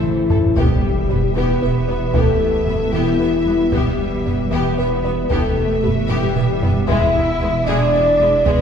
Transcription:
0.00 0.56 A1 medium
0.00 0.53 E3 medium
0.00 0.57 A3 medium
0.00 0.53 E4 medium
0.00 0.57 A4 medium
0.00 0.57 C5 medium
0.00 taiko mid medium
0.30 0.38 A1 soft
0.30 0.46 A4 medium
0.30 0.39 A4 soft
0.30 0.38 C5 soft
0.30 taiko low medium
0.56 5.26 E1 medium
0.56 0.65 E1 medium
0.56 0.73 E3 medium
0.56 1.34 G3 medium
0.56 5.27 B3 medium
0.56 0.82 B3 medium
0.56 5.27 E4 medium
0.56 0.82 G4 medium
0.56 1.36 G4 medium
0.56 5.27 G4 medium
0.56 5.27 B4 medium
0.56 5.26 E5 medium
0.56 taiko loud
0.56 sub drop medium
1.09 1.17 E1 soft
1.09 1.26 G3 medium
1.09 1.18 B3 soft
1.09 1.18 B4 soft
1.09 taiko low medium
1.36 1.44 E1 medium
1.36 1.52 E3 medium
1.36 2.13 B3 medium
1.36 1.61 B3 medium
1.36 1.60 G4 medium
1.36 2.15 B4 medium
1.62 1.70 E1 soft
1.62 1.70 B3 soft
1.62 1.78 B3 medium
1.62 1.71 E5 soft
1.88 1.97 E1 medium
1.88 2.04 G3 medium
1.88 1.96 B3 medium
1.88 1.98 B4 medium
2.14 2.23 E1 medium
2.14 2.30 E3 medium
2.14 2.94 A3 medium
2.14 2.39 B3 medium
2.14 2.39 G4 medium
2.14 2.92 A4 medium
2.14 taiko loud
2.67 2.76 E1 soft
2.67 2.83 G3 medium
2.67 2.76 B3 soft
2.67 2.76 B4 soft
2.67 taiko low medium
2.92 3.02 E1 medium
2.92 3.09 E3 medium
2.92 3.73 E3 medium
2.92 3.19 B3 medium
2.92 3.72 E4 medium
2.92 3.18 G4 medium
3.20 3.28 E1 soft
3.20 3.36 B3 medium
3.20 3.29 B3 medium
3.20 3.28 E5 medium
3.46 3.55 E1 soft
3.46 3.62 G3 medium
3.46 3.55 B3 medium
3.46 3.55 B4 soft
3.71 3.81 E1 medium
3.71 3.88 E3 medium
3.71 4.52 G3 medium
3.71 3.98 B3 medium
3.71 4.49 G4 medium
3.71 3.98 G4 medium
3.71 taiko medium
4.25 4.33 E1 medium
4.25 4.41 G3 medium
4.25 4.34 B3 soft
4.25 4.34 B4 soft
4.25 taiko low medium
4.50 4.60 E1 medium
4.50 4.67 E3 medium
4.50 5.31 B3 medium
4.50 4.76 B3 medium
4.50 4.77 G4 medium
4.50 5.28 B4 medium
4.78 4.87 E1 medium
4.78 4.94 B3 medium
4.78 4.87 B3 medium
4.78 4.87 E5 medium
5.04 5.13 E1 medium
5.04 5.20 G3 medium
5.04 5.13 B3 medium
5.04 5.13 B4 medium
5.30 8.61 E1 medium
5.30 5.39 E1 medium
5.30 5.46 E3 medium
5.30 6.08 A3 medium
5.30 5.55 B3 medium
5.30 8.61 B3 medium
5.30 8.61 E4 medium
5.30 5.55 G4 medium
5.30 6.85 G4 medium
5.30 5.93 A4 medium
5.30 6.85 B4 medium
5.30 6.86 E5 medium
5.30 taiko medium
5.83 5.92 E1 medium
5.83 5.99 G3 medium
5.83 5.92 B3 soft
5.83 5.91 B4 medium
5.83 taiko low medium
6.09 6.17 E1 medium
6.09 6.25 E3 medium
6.09 6.89 G3 medium
6.09 6.34 B3 medium
6.09 6.34 G4 medium
6.09 6.87 G4 medium
6.09 taiko low-mid medium
6.36 6.44 E1 medium
6.36 6.52 B3 medium
6.36 6.44 B3 medium
6.36 6.44 E5 medium
6.36 taiko low-mid medium
6.62 6.71 E1 medium
6.62 6.78 G3 medium
6.62 6.71 B3 medium
6.62 6.71 B4 medium
6.62 taiko low medium
6.87 6.97 E1 medium
6.87 7.04 E3 medium
6.87 7.13 G#3 medium
6.87 7.66 E4 medium
6.87 7.13 G#4 medium
6.87 8.61 G#4 medium
6.87 8.61 D5 medium
6.87 7.65 E5 loud
6.87 8.61 E5 medium
6.87 taiko loud
7.40 7.50 E1 medium
7.40 7.56 G#3 medium
7.40 7.50 G#3 medium
7.40 7.49 B4 medium
7.68 7.76 E1 medium
7.68 7.84 E3 medium
7.68 7.93 G#3 medium
7.68 8.47 D4 medium
7.68 7.92 G#4 medium
7.68 8.47 D5 loud
7.94 8.02 E1 medium
7.94 8.03 G#3 medium
7.94 8.10 B3 medium
7.94 8.03 D5 medium
8.20 8.28 E1 medium
8.20 8.36 G#3 medium
8.20 8.29 G#3 medium
8.20 8.28 B4 medium
8.46 8.54 E1 medium
8.46 8.61 E3 medium
8.46 8.61 G#3 medium
8.46 8.61 B3 medium
8.46 8.61 G#4 medium
8.46 8.61 B4 loud
8.46 taiko medium

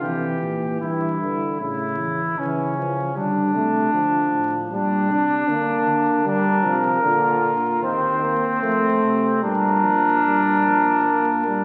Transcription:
0.01 0.39 C3 medium
0.01 0.78 E3 medium
0.01 0.77 G4 medium
0.42 0.81 A#2 medium
0.81 1.43 G2 medium
0.81 1.20 E3 medium
0.81 1.58 E4 medium
1.21 1.59 D3 soft
1.60 2.01 A2 medium
1.60 2.21 C#3 medium
1.60 2.40 E4 medium
1.99 2.40 E3 medium
2.38 3.15 C#3 medium
2.38 2.76 E3 medium
2.38 3.16 C#4 medium
2.78 3.15 F3 medium
3.15 3.56 D3 medium
3.15 3.56 G3 medium
3.15 4.54 D4 medium
3.54 3.92 C3 medium
3.54 3.93 A3 medium
3.93 4.31 D3 medium
3.93 4.69 F3 medium
4.32 4.70 A2 medium
4.71 5.08 A#2 medium
4.71 5.12 G3 medium
4.71 6.23 D4 medium
5.09 5.47 C3 medium
5.09 5.50 D4 medium
5.48 5.86 D3 medium
5.48 6.24 A#3 medium
5.87 6.25 D3 medium
6.25 6.64 D3 medium
6.25 6.66 G3 medium
6.25 6.76 D4 medium
6.25 7.78 A#4 medium
6.65 7.03 C3 medium
6.65 7.02 F3 medium
7.03 7.42 A#2 medium
7.03 7.53 D3 medium
7.03 7.79 F4 medium
7.43 7.81 A#2 medium
7.82 8.33 D#2 medium
7.82 8.19 D#3 medium
7.82 9.41 C4 medium
7.82 8.61 C5 medium
8.21 8.64 A#3 medium
8.62 9.00 F2 medium
8.62 9.44 A3 medium
8.62 9.42 C5 medium
9.03 9.45 C3 medium
9.43 11.64 A#2 medium
9.43 9.86 G3 medium
9.43 11.64 D4 medium
9.43 11.64 A#4 medium
9.84 10.25 F3 medium
10.26 10.66 G3 medium
10.66 11.05 F3 medium
11.06 11.46 A#3 medium
11.47 11.64 G3 medium

